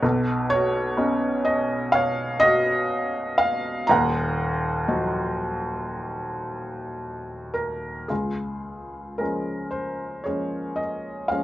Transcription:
0.02 3.86 B1 medium
0.02 3.85 B2 medium
0.50 2.39 F#4 medium
0.50 1.41 C#5 loud
0.97 3.85 B3 medium
0.97 3.86 C#4 medium
0.97 3.86 D#4 medium
1.45 1.90 D#5 medium
1.92 3.87 C#5 medium
1.92 2.43 F5 medium
2.40 3.86 F#4 medium
2.40 3.42 D#5 loud
3.38 3.89 F5 loud
3.87 8.06 D#1 medium
3.87 8.06 D#2 medium
3.87 7.51 F5 medium
3.87 7.51 F#5 medium
3.87 7.50 A#5 loud
4.88 8.06 F3 soft
4.88 8.05 F#3 medium
4.88 8.05 D#4 soft
7.54 8.05 A#4 medium
8.08 11.44 C#2 soft
8.08 10.21 F4 soft
8.08 9.21 G#4 soft
9.18 10.23 F3 soft
9.18 10.23 G#3 soft
9.18 10.23 C#4 soft
9.18 9.68 A#4 soft
9.71 10.26 C5 medium
10.24 11.28 F3 soft
10.24 11.28 G#3 soft
10.24 11.28 C#4 soft
10.24 11.44 G#4 soft
10.24 10.79 C#5 medium
10.76 11.26 D#5 medium
11.28 11.44 F3 soft
11.28 11.44 G#3 soft
11.28 11.44 C#4 soft
11.28 11.44 F5 medium

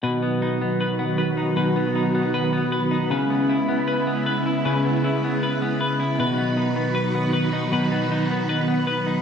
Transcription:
0.01 1.55 B2 medium
0.01 3.07 D#3 medium
0.01 3.07 F#3 medium
0.01 6.14 B3 medium
0.01 3.07 F#4 medium
0.01 9.22 B4 medium
0.01 0.80 B4 medium
0.22 0.61 B3 soft
0.42 1.36 D#4 soft
0.62 0.99 B3 soft
0.81 1.18 B4 soft
0.99 1.75 B3 soft
1.18 1.56 B4 medium
1.37 1.94 D#4 soft
1.56 3.18 B2 medium
1.56 2.34 B4 medium
1.76 2.14 B3 soft
1.95 2.90 D#4 soft
2.15 2.52 B3 soft
2.34 2.72 B4 medium
2.53 3.30 B3 soft
2.72 3.11 B4 soft
2.91 3.18 D#4 medium
3.10 4.64 C#3 medium
3.10 6.16 C#3 medium
3.10 6.16 G#3 medium
3.10 6.16 E4 medium
3.10 3.87 B4 medium
3.30 3.68 B3 soft
3.49 4.45 E4 soft
3.69 4.07 B3 medium
3.88 4.26 B4 medium
4.07 4.85 B3 soft
4.26 4.65 B4 medium
4.46 5.03 E4 soft
4.65 6.27 C#3 medium
4.65 5.43 B4 medium
4.85 5.24 B3 soft
5.04 5.99 E4 soft
5.24 5.61 B3 soft
5.43 5.80 B4 medium
5.62 6.38 B3 soft
5.81 6.19 B4 medium
6.00 6.27 E4 soft
6.18 7.71 B2 medium
6.18 9.22 D#3 medium
6.18 9.22 F#3 medium
6.18 9.22 B3 medium
6.18 9.22 F#4 medium
6.18 6.94 B4 medium
6.38 6.76 B3 soft
6.57 7.52 D#4 soft
6.76 7.14 B3 soft
6.95 7.33 B4 medium
7.15 7.91 B3 soft
7.33 7.72 B4 medium
7.53 8.10 D#4 soft
7.72 9.22 B2 medium
7.72 8.49 B4 medium
7.91 8.30 B3 medium
8.11 9.05 D#4 medium
8.31 8.68 B3 soft
8.49 8.87 B4 medium
8.68 9.22 B3 soft
8.87 9.22 B4 medium
9.06 9.22 D#4 soft

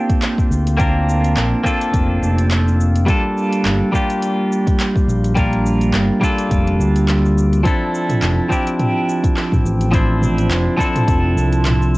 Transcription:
0.00 0.76 A#3 medium
0.00 0.76 C4 medium
0.00 0.76 D4 medium
0.00 0.77 F4 medium
0.00 0.77 G4 medium
0.09 kick loud
0.09 closed hi-hat soft
0.09 cabasa soft
0.22 clap loud
0.22 closed hi-hat medium
0.22 cabasa soft
0.38 kick medium
0.38 cabasa soft
0.51 1.33 D2 medium
0.51 cabasa medium
0.67 closed hi-hat soft
0.67 cabasa soft
0.77 1.61 A#3 medium
0.77 1.61 C4 medium
0.77 1.62 D4 medium
0.77 1.62 F4 medium
0.77 1.63 A#4 medium
0.77 kick loud
0.77 closed hi-hat medium
0.77 cabasa soft
1.09 cabasa medium
1.24 closed hi-hat soft
1.24 cabasa soft
1.36 1.50 A#1 medium
1.36 clap loud
1.36 closed hi-hat medium
1.36 cabasa soft
1.63 3.04 A#3 medium
1.63 3.04 C4 medium
1.63 3.05 D4 medium
1.63 3.05 F4 medium
1.63 3.06 A4 loud
1.63 kick medium
1.63 cabasa medium
1.81 closed hi-hat soft
1.81 cabasa soft
1.94 2.18 F1 medium
1.94 kick loud
1.94 closed hi-hat medium
1.94 cabasa soft
2.22 3.05 F1 medium
2.22 cabasa medium
2.38 closed hi-hat soft
2.38 cabasa soft
2.51 clap loud
2.51 closed hi-hat medium
2.51 cabasa soft
2.68 cabasa soft
2.81 cabasa medium
2.96 closed hi-hat soft
2.96 cabasa soft
3.06 3.90 G3 medium
3.06 3.90 A#3 medium
3.06 3.91 D4 medium
3.06 3.91 F4 medium
3.06 3.92 A4 loud
3.06 kick loud
3.06 closed hi-hat medium
3.06 cabasa soft
3.38 cabasa medium
3.53 closed hi-hat soft
3.53 cabasa soft
3.65 3.79 G1 medium
3.65 clap loud
3.65 closed hi-hat soft
3.65 cabasa soft
3.92 5.33 G3 medium
3.92 5.33 A#3 medium
3.92 5.34 D4 medium
3.92 5.34 F4 medium
3.92 5.35 G4 medium
3.92 kick medium
3.92 cabasa medium
4.10 closed hi-hat soft
4.10 cabasa soft
4.22 closed hi-hat soft
4.22 cabasa soft
4.52 cabasa medium
4.67 kick loud
4.67 closed hi-hat soft
4.67 cabasa soft
4.80 clap loud
4.80 closed hi-hat soft
4.80 cabasa soft
4.95 kick loud
4.95 cabasa soft
5.08 5.91 A#1 medium
5.08 cabasa medium
5.24 closed hi-hat soft
5.24 cabasa soft
5.35 6.19 G3 medium
5.35 6.19 A#3 medium
5.35 6.20 D4 medium
5.35 6.20 F4 medium
5.35 6.20 A#4 medium
5.35 kick loud
5.35 closed hi-hat soft
5.35 cabasa soft
5.53 closed hi-hat soft
5.66 cabasa medium
5.81 closed hi-hat soft
5.81 cabasa soft
5.94 6.07 G1 medium
5.94 clap loud
5.94 closed hi-hat medium
5.94 cabasa soft
6.21 7.61 G3 medium
6.21 7.62 A#3 medium
6.21 7.62 D4 medium
6.21 7.63 F4 medium
6.21 7.63 A4 loud
6.21 kick medium
6.21 cabasa medium
6.38 closed hi-hat soft
6.38 cabasa soft
6.51 6.75 F1 medium
6.51 kick loud
6.51 closed hi-hat soft
6.51 cabasa soft
6.67 closed hi-hat soft
6.79 7.62 D2 medium
6.79 cabasa medium
6.96 closed hi-hat soft
6.96 cabasa soft
7.08 clap medium
7.08 closed hi-hat medium
7.08 cabasa soft
7.25 cabasa soft
7.38 cabasa medium
7.53 closed hi-hat soft
7.53 cabasa soft
7.63 8.47 F3 medium
7.63 8.48 C4 medium
7.63 8.48 D4 medium
7.63 8.48 E4 medium
7.63 8.49 A4 loud
7.63 kick loud
7.63 closed hi-hat soft
7.63 cabasa soft
7.95 cabasa medium
8.10 closed hi-hat soft
8.10 mid tom medium
8.10 cabasa soft
8.22 8.36 F1 medium
8.22 clap medium
8.22 closed hi-hat medium
8.22 cabasa soft
8.49 9.90 F3 medium
8.49 9.90 C4 medium
8.49 9.91 D4 medium
8.49 9.91 E4 medium
8.49 9.92 G4 medium
8.49 kick medium
8.49 cabasa medium
8.67 closed hi-hat soft
8.67 cabasa soft
8.79 closed hi-hat medium
8.79 mid tom medium
8.79 cabasa soft
9.09 cabasa medium
9.24 kick loud
9.24 closed hi-hat soft
9.24 cabasa soft
9.37 clap medium
9.37 closed hi-hat soft
9.37 cabasa soft
9.52 kick loud
9.52 mid tom medium
9.52 cabasa soft
9.65 10.48 A1 medium
9.65 cabasa medium
9.81 closed hi-hat soft
9.81 cabasa soft
9.92 10.75 F3 medium
9.92 10.76 C4 medium
9.92 10.76 D4 medium
9.92 10.77 E4 medium
9.92 10.77 C5 medium
9.92 kick loud
9.92 closed hi-hat medium
9.92 cabasa soft
10.22 mid tom medium
10.22 cabasa medium
10.38 closed hi-hat soft
10.38 cabasa soft
10.51 10.64 F1 loud
10.51 clap medium
10.51 closed hi-hat medium
10.51 cabasa soft
10.77 11.98 F3 loud
10.77 11.98 C4 medium
10.77 11.98 D4 medium
10.77 11.98 E4 medium
10.77 11.98 A4 loud
10.77 kick medium
10.77 cabasa medium
10.96 closed hi-hat soft
10.96 mid tom medium
10.96 cabasa soft
11.08 11.32 F1 medium
11.08 kick loud
11.08 closed hi-hat medium
11.08 cabasa soft
11.36 11.98 C2 medium
11.36 cabasa medium
11.52 closed hi-hat soft
11.52 cabasa soft
11.65 clap medium
11.65 closed hi-hat medium
11.65 mid tom medium
11.65 cabasa soft
11.82 cabasa soft
11.95 cabasa medium

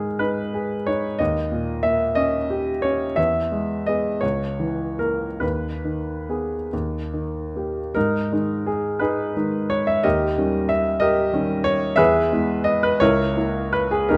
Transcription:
0.00 1.16 G#2 soft
0.00 1.22 D#3 soft
0.00 0.41 G#3 soft
0.00 0.19 G#4 soft
0.00 1.22 A#4 medium
0.19 0.75 D#4 soft
0.19 0.87 B4 medium
0.54 1.07 G#4 soft
0.87 1.20 D#4 soft
0.87 1.19 C#5 medium
1.19 3.14 D#2 soft
1.19 1.83 D#5 medium
1.52 2.03 A#2 soft
1.83 2.37 A#3 soft
1.83 2.16 E5 medium
2.15 2.71 C#4 soft
2.15 2.83 D#5 medium
2.50 3.04 G4 soft
2.82 3.18 C#4 soft
2.82 3.17 C#5 medium
3.16 4.19 E2 soft
3.16 3.86 E5 medium
3.52 4.08 G#3 soft
3.86 4.20 B3 soft
3.86 4.20 G#4 soft
3.86 4.23 D#5 medium
4.21 5.38 C#2 soft
4.21 4.98 C#5 medium
4.60 5.24 E3 soft
4.99 5.38 A#3 soft
4.99 5.42 A#4 medium
5.40 6.68 D#2 soft
5.40 6.71 B4 soft
5.85 6.54 D#3 soft
6.29 6.68 B3 soft
6.29 6.68 G#4 soft
6.73 7.92 D#2 soft
7.13 7.80 D#3 soft
7.56 7.91 A#3 soft
7.56 7.91 G4 soft
7.95 8.31 G#2 soft
7.95 8.32 D#4 medium
7.95 8.67 A#4 medium
8.32 9.33 D#3 soft
8.32 9.33 G#3 soft
8.32 9.00 D#4 soft
8.66 8.99 G#4 soft
8.99 9.35 D#4 soft
8.99 9.66 G#4 soft
8.99 9.69 B4 medium
9.37 10.01 D#3 soft
9.37 10.00 G#3 soft
9.37 10.00 D#4 soft
9.70 9.87 C#5 medium
9.87 10.04 E5 medium
10.03 10.37 D#2 soft
10.03 10.66 G4 medium
10.03 10.66 A#4 medium
10.03 10.70 D#5 medium
10.38 11.30 D#3 soft
10.38 11.30 G3 soft
10.38 11.31 C#4 soft
10.69 11.01 E5 medium
11.00 11.62 G4 medium
11.00 11.62 A#4 medium
11.00 11.65 D#5 medium
11.33 11.95 D#3 soft
11.33 11.95 G3 soft
11.33 11.95 C#4 soft
11.64 11.98 C#5 medium
11.96 12.30 E2 medium
11.96 12.61 G#4 medium
11.96 12.61 B4 medium
11.96 12.64 E5 medium
12.32 12.97 G#3 soft
12.32 12.97 B3 soft
12.32 12.97 E4 soft
12.64 12.82 D#5 medium
12.83 13.01 B4 medium
13.00 13.36 C#2 medium
13.00 13.36 E4 medium
13.00 13.70 A#4 medium
13.00 13.73 C#5 medium
13.37 14.08 A#3 soft
13.37 14.08 E4 soft
13.73 13.92 B4 medium
13.91 14.11 G#4 medium
14.09 14.17 D#2 soft
14.09 14.17 D#4 medium
14.09 14.17 G4 soft
14.09 14.17 A#4 medium

